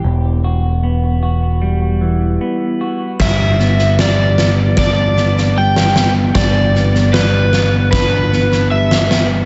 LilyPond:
<<
  \new Staff \with { instrumentName = "Electric slide guitar" } { \time 4/4 \key g \major \tempo 4 = 76 r1 | e''4 d''4 d''4 g''8. r16 | d''4 b'4 b'4 e''8. r16 | }
  \new Staff \with { instrumentName = "Clean electric guitar" } { \time 4/4 \key g \major e,8 fis'8 b8 fis'8 g8 e8 b8 fis'8 | g8 b8 g8 b8 d'8 b8 g8 b8 | g8 b8 g8 b8 d'8 b8 g8 b8 | }
  \new Staff \with { instrumentName = "Picked electric bass" } { \clef bass \time 4/4 \key g \major e,,2. r4 | g,,1 | g,,1 | }
  \new DrumStaff \with { instrumentName = "Drums" } \drummode { \time 4/4 r4 r4 r4 r4 | <cymc bd sn>8 sn16 sn16 sn8 sn8 <bd sn>8 sn16 sn16 r16 sn16 sn8 | <bd sn>8 sn16 sn16 sn8 sn8 <bd sn>8 sn16 sn16 r16 sn16 sn8 | }
>>